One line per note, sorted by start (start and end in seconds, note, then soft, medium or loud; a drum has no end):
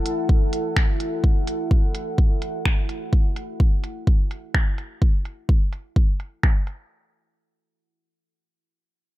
0.00 3.13 E4 medium
0.00 3.13 A4 medium
0.00 3.13 F#5 medium
0.06 closed hi-hat medium
0.29 kick loud
0.53 closed hi-hat medium
0.76 finger snap medium
0.76 kick loud
1.00 closed hi-hat medium
1.24 kick loud
1.47 closed hi-hat medium
1.71 kick loud
1.95 closed hi-hat medium
2.18 kick loud
2.42 closed hi-hat medium
2.65 finger snap medium
2.65 kick loud
2.89 closed hi-hat medium
3.13 kick loud
3.36 closed hi-hat medium
3.60 kick loud
3.84 closed hi-hat medium
4.07 kick loud
4.31 closed hi-hat medium
4.54 finger snap loud
4.54 kick loud
4.78 closed hi-hat medium
5.02 kick loud
5.25 closed hi-hat medium
5.49 kick loud
5.73 closed hi-hat medium
5.96 kick loud
6.20 closed hi-hat medium
6.43 finger snap loud
6.43 kick loud
6.67 closed hi-hat medium